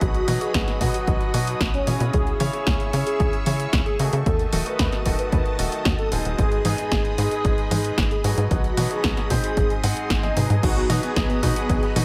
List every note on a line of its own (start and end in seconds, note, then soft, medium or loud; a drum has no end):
0.00 0.22 B1 loud
0.00 0.25 B2 medium
0.00 0.25 F#3 medium
0.00 0.25 B3 medium
0.00 0.25 D#4 medium
0.00 0.25 F#4 medium
0.00 0.29 F#4 loud
0.00 2.12 F#4 medium
0.00 2.12 D#5 medium
0.00 2.10 B5 medium
0.00 2.10 D#6 medium
0.00 kick loud
0.00 closed hi-hat medium
0.14 closed hi-hat soft
0.28 0.38 B2 loud
0.28 0.38 B2 medium
0.28 0.38 F#3 medium
0.28 0.38 B3 medium
0.28 0.38 D#4 medium
0.28 0.38 F#4 loud
0.28 open hi-hat loud
0.28 high tom medium
0.41 0.78 B2 medium
0.41 0.78 F#3 medium
0.41 0.78 B3 medium
0.41 0.78 D#4 medium
0.41 0.78 F#4 medium
0.41 0.79 G#4 loud
0.41 closed hi-hat soft
0.54 0.65 B1 medium
0.54 kick loud
0.54 snare loud
0.54 closed hi-hat medium
0.68 snare soft
0.68 closed hi-hat soft
0.81 1.31 B2 medium
0.81 0.91 B2 loud
0.81 1.31 F#3 medium
0.81 1.31 B3 medium
0.81 1.31 D#4 medium
0.81 1.31 F#4 medium
0.81 kick medium
0.81 open hi-hat loud
0.94 1.22 F#4 loud
0.94 closed hi-hat medium
1.07 1.18 B1 loud
1.07 kick loud
1.07 closed hi-hat soft
1.21 closed hi-hat soft
1.34 1.67 B2 medium
1.34 1.55 B2 medium
1.34 1.67 F#3 medium
1.34 1.67 B3 medium
1.34 1.67 D#4 medium
1.34 1.67 F#4 loud
1.34 open hi-hat loud
1.47 closed hi-hat medium
1.61 1.81 B1 medium
1.61 kick loud
1.61 snare loud
1.61 closed hi-hat medium
1.74 2.02 C#4 loud
1.74 closed hi-hat soft
1.87 1.98 B2 medium
1.87 2.37 C#3 medium
1.87 2.37 C#4 medium
1.87 2.37 E4 medium
1.87 2.37 G#4 medium
1.87 2.37 C#5 medium
1.87 open hi-hat loud
1.87 high tom medium
2.00 2.11 B2 loud
2.00 closed hi-hat soft
2.13 2.35 C#2 loud
2.13 4.24 G#4 medium
2.13 2.42 G#4 loud
2.13 4.24 E5 medium
2.13 4.24 C#6 medium
2.13 4.24 E6 medium
2.13 kick loud
2.13 closed hi-hat soft
2.27 closed hi-hat soft
2.40 2.50 C#3 loud
2.40 2.51 C#3 medium
2.40 2.50 C#4 medium
2.40 2.50 E4 medium
2.40 2.50 G#4 medium
2.40 2.50 C#5 loud
2.40 open hi-hat loud
2.40 high tom medium
2.53 2.90 C#3 medium
2.53 2.90 C#4 medium
2.53 2.90 E4 medium
2.53 2.90 G#4 medium
2.53 2.91 G#4 loud
2.53 2.90 C#5 medium
2.53 closed hi-hat soft
2.67 2.77 C#2 medium
2.67 kick loud
2.67 snare loud
2.67 closed hi-hat medium
2.80 closed hi-hat soft
2.93 3.43 C#3 medium
2.93 3.04 C#3 loud
2.93 3.43 C#4 medium
2.93 3.43 E4 medium
2.93 3.43 G#4 medium
2.93 3.43 C#5 medium
2.93 open hi-hat loud
3.06 3.35 G#4 loud
3.06 closed hi-hat soft
3.20 3.30 C#2 medium
3.20 kick loud
3.20 closed hi-hat soft
3.33 closed hi-hat soft
3.46 3.79 C#3 medium
3.46 3.67 C#3 medium
3.46 3.79 C#4 medium
3.46 3.79 E4 medium
3.46 3.79 G#4 medium
3.46 3.79 C#5 medium
3.46 open hi-hat loud
3.46 high tom medium
3.60 closed hi-hat soft
3.73 3.83 C#2 loud
3.73 kick loud
3.73 snare loud
3.73 closed hi-hat soft
3.86 4.14 G#4 loud
3.86 closed hi-hat soft
3.99 4.10 C#3 medium
3.99 4.50 D#3 medium
3.99 4.50 A3 medium
3.99 4.50 D#4 medium
3.99 4.50 F#4 medium
3.99 4.50 A4 medium
3.99 open hi-hat loud
4.13 4.23 C#3 loud
4.13 closed hi-hat soft
4.26 4.47 D#2 loud
4.26 6.36 F#4 medium
4.26 4.54 A4 loud
4.26 10.59 D#5 medium
4.26 6.37 A5 medium
4.26 8.47 D#6 medium
4.26 kick loud
4.26 closed hi-hat soft
4.39 closed hi-hat soft
4.53 4.63 D#1 medium
4.53 4.63 D#3 loud
4.53 4.63 A3 medium
4.53 4.63 D#4 medium
4.53 4.63 F#4 medium
4.53 4.63 A4 loud
4.53 open hi-hat loud
4.53 high tom medium
4.66 5.03 D#3 medium
4.66 5.03 A3 medium
4.66 5.03 D#4 medium
4.66 5.03 F#4 medium
4.66 5.03 A4 medium
4.66 5.03 B4 loud
4.66 closed hi-hat soft
4.79 4.90 D#2 medium
4.79 kick loud
4.79 snare loud
4.79 closed hi-hat medium
4.92 snare soft
4.92 closed hi-hat soft
5.06 5.16 D#1 loud
5.06 5.56 D#3 medium
5.06 5.56 A3 medium
5.06 5.56 D#4 medium
5.06 5.56 F#4 medium
5.06 5.56 A4 medium
5.06 kick medium
5.06 open hi-hat loud
5.19 5.47 B4 medium
5.19 closed hi-hat soft
5.32 5.43 D#2 medium
5.32 kick loud
5.32 closed hi-hat soft
5.46 closed hi-hat soft
5.59 5.69 D#1 medium
5.59 5.92 D#3 medium
5.59 5.92 A3 medium
5.59 5.92 D#4 medium
5.59 5.92 F#4 medium
5.59 5.92 A4 medium
5.59 open hi-hat loud
5.72 closed hi-hat soft
5.85 5.96 D#2 loud
5.85 kick loud
5.85 snare loud
5.85 closed hi-hat soft
5.99 6.27 A4 loud
5.99 closed hi-hat soft
6.12 6.22 D#1 loud
6.12 6.62 G#2 medium
6.12 6.62 G#3 medium
6.12 6.62 B3 medium
6.12 6.62 D#4 medium
6.12 6.62 G#4 medium
6.12 open hi-hat loud
6.25 6.36 D#1 medium
6.25 closed hi-hat soft
6.38 6.59 G#1 loud
6.38 6.67 G#4 loud
6.38 8.49 G#4 medium
6.38 8.49 B5 medium
6.38 kick loud
6.38 closed hi-hat medium
6.52 closed hi-hat soft
6.65 6.75 G#2 loud
6.65 6.76 G#2 medium
6.65 6.75 G#3 medium
6.65 6.75 B3 medium
6.65 6.75 D#4 medium
6.65 6.75 G#4 loud
6.65 open hi-hat loud
6.65 high tom medium
6.78 7.15 G#2 medium
6.78 7.15 G#3 medium
6.78 7.15 B3 medium
6.78 7.15 D#4 medium
6.78 7.15 G#4 medium
6.78 7.16 G#4 loud
6.78 closed hi-hat soft
6.92 7.02 G#1 medium
6.92 kick loud
6.92 snare loud
6.92 closed hi-hat medium
7.05 closed hi-hat soft
7.18 7.68 G#2 medium
7.18 7.29 G#2 loud
7.18 7.68 G#3 medium
7.18 7.68 B3 medium
7.18 7.68 D#4 medium
7.18 7.68 G#4 medium
7.18 open hi-hat loud
7.31 7.60 G#4 loud
7.31 closed hi-hat medium
7.45 7.55 G#1 medium
7.45 kick loud
7.45 closed hi-hat soft
7.58 closed hi-hat soft
7.71 8.04 G#2 medium
7.71 7.92 G#2 medium
7.71 8.04 G#3 medium
7.71 8.04 B3 medium
7.71 8.04 D#4 medium
7.71 8.04 G#4 loud
7.71 open hi-hat loud
7.71 high tom medium
7.84 closed hi-hat medium
7.98 8.08 G#1 loud
7.98 kick loud
7.98 snare loud
7.98 closed hi-hat medium
8.11 8.39 G#4 loud
8.11 closed hi-hat soft
8.24 8.35 G#2 medium
8.24 8.74 B2 medium
8.24 8.74 F#3 medium
8.24 8.74 B3 medium
8.24 8.74 D#4 medium
8.24 8.74 F#4 medium
8.24 open hi-hat loud
8.38 8.48 G#2 loud
8.38 closed hi-hat soft
8.51 8.72 B1 loud
8.51 8.79 F#4 loud
8.51 9.56 F#4 medium
8.51 9.56 B5 medium
8.51 10.61 D#6 medium
8.51 kick loud
8.51 closed hi-hat medium
8.64 closed hi-hat soft
8.77 8.88 B2 loud
8.77 8.88 B2 medium
8.77 8.88 F#3 medium
8.77 8.88 B3 medium
8.77 8.88 D#4 medium
8.77 8.88 F#4 loud
8.77 open hi-hat loud
8.77 high tom medium
8.91 9.27 B2 medium
8.91 9.27 F#3 medium
8.91 9.27 B3 medium
8.91 9.27 D#4 medium
8.91 9.27 F#4 medium
8.91 9.28 G#4 loud
8.91 closed hi-hat medium
9.04 9.14 B1 medium
9.04 kick loud
9.04 snare loud
9.04 closed hi-hat medium
9.17 snare soft
9.17 closed hi-hat soft
9.30 9.80 G#2 medium
9.30 9.41 B2 loud
9.30 9.80 C4 medium
9.30 9.80 D#4 medium
9.30 9.80 G#4 medium
9.30 9.80 C5 medium
9.30 kick medium
9.30 open hi-hat loud
9.44 9.72 G#4 loud
9.44 closed hi-hat medium
9.57 9.67 G#1 medium
9.57 10.62 G#4 medium
9.57 10.62 C6 medium
9.57 kick loud
9.57 closed hi-hat medium
9.70 closed hi-hat soft
9.83 9.94 G#2 medium
9.83 10.20 G#2 loud
9.83 10.20 C4 medium
9.83 10.20 D#4 medium
9.83 10.20 G#4 medium
9.83 10.20 F#5 loud
9.83 open hi-hat loud
9.97 closed hi-hat medium
10.10 10.31 G#1 loud
10.10 kick loud
10.10 snare loud
10.10 closed hi-hat medium
10.23 10.35 G#2 medium
10.23 10.35 C4 medium
10.23 10.35 D#4 medium
10.23 10.51 D#4 loud
10.23 10.35 G#4 medium
10.23 10.35 D#5 medium
10.23 snare soft
10.23 closed hi-hat soft
10.23 high tom medium
10.37 10.47 G#2 medium
10.37 10.87 B2 medium
10.37 10.87 F#3 medium
10.37 10.87 B3 medium
10.37 10.87 D#4 medium
10.37 10.87 G#4 medium
10.37 open hi-hat loud
10.37 mid tom medium
10.50 10.60 G#2 medium
10.50 closed hi-hat medium
10.50 mid tom medium
10.63 10.84 B1 loud
10.63 10.91 D#4 medium
10.63 10.91 F#4 loud
10.63 12.05 F#4 medium
10.63 12.05 D#5 medium
10.63 12.05 B5 medium
10.63 12.05 D#6 medium
10.63 kick loud
10.63 closed hi-hat medium
10.63 crash loud
10.77 10.87 B3 medium
10.77 closed hi-hat soft
10.90 11.00 B2 loud
10.90 11.00 B2 medium
10.90 11.00 F#3 medium
10.90 11.00 B3 medium
10.90 11.00 D#4 medium
10.90 11.00 F#4 loud
10.90 open hi-hat loud
10.90 high tom medium
11.03 11.40 B2 medium
11.03 11.40 F#3 medium
11.03 11.40 B3 medium
11.03 11.41 B3 medium
11.03 11.40 D#4 medium
11.03 11.40 F#4 medium
11.03 11.09 F#4 medium
11.03 11.40 G#4 loud
11.03 closed hi-hat medium
11.16 11.27 B1 medium
11.16 kick loud
11.16 snare loud
11.16 closed hi-hat medium
11.30 11.40 B3 medium
11.30 closed hi-hat soft
11.43 11.93 B2 medium
11.43 11.53 B2 loud
11.43 11.93 F#3 medium
11.43 11.93 B3 medium
11.43 11.93 D#4 medium
11.43 11.54 D#4 medium
11.43 11.93 F#4 medium
11.43 kick medium
11.43 open hi-hat loud
11.56 11.84 B3 medium
11.56 11.63 F#4 medium
11.56 11.84 G#4 medium
11.56 closed hi-hat medium
11.69 11.80 B1 medium
11.69 kick loud
11.69 closed hi-hat medium
11.83 11.93 B3 medium
11.83 closed hi-hat soft
11.96 12.05 B2 medium
11.96 12.05 F#3 medium
11.96 12.05 B3 medium
11.96 12.05 D#4 medium
11.96 12.05 F#4 loud
11.96 open hi-hat loud
11.96 high tom medium